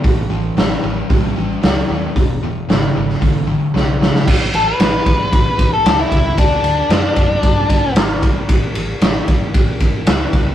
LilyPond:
<<
  \new Staff \with { instrumentName = "Lead electric guitar" } { \time 4/4 \key a \mixolydian \tempo 4 = 114 r1 | r1 | r8 a'16 b'2 a'8 e'8. | d'2. r4 |
r1 | }
  \new Staff \with { instrumentName = "Distorted electric guitar" } { \clef bass \time 4/4 \key a \mixolydian <a, e>8 <a, e>8 <a, fis>8 <a, fis>8 <a, g>8 <a, g>8 <a, fis>8 <a, fis>8 | <e, b,>8 <e, b,>8 <e, cis>8 <e, cis>8 <e, d>8 <e, d>8 <e, cis>8 <e, cis>8 | r1 | r1 |
r1 | }
  \new Staff \with { instrumentName = "Picked electric bass" } { \clef bass \time 4/4 \key a \mixolydian a,,8 a,,8 a,,8 a,,8 a,,8 a,,8 cis,8 dis,8 | e,,8 e,,8 gis,,8 gis,,8 a,,4 b,,4 | a,,8 a,,8 a,,8 a,,8 a,,8 a,,8 cis,8 cis,8 | d,8 d,8 fis,8 fis,8 g,4 gis,,4 |
a,,8 a,,8 a,,8 a,,8 a,,8 a,,8 cis,8 cis,8 | }
  \new DrumStaff \with { instrumentName = "Drums" } \drummode { \time 4/4 <hho bd>4 <hho sn>4 <hho bd>4 <hho sn>4 | <hho bd>4 <hho sn>8. sn16 <hho bd>4 sn8 sn16 sn16 | <cymc bd>8 cymr8 <cymr sn>8 <bd cymr>8 <bd cymr>8 <bd cymr>8 <cymr sn>8 <bd cymr>8 | <bd cymr>8 cymr8 <cymr sn>8 <bd cymr>8 <bd cymr>8 <bd cymr>8 <cymr sn>8 <bd cymr>8 |
<bd cymr>8 cymr8 <cymr sn>8 <bd cymr>8 <bd cymr>8 <bd cymr>8 <cymr sn>8 <bd cymr>8 | }
>>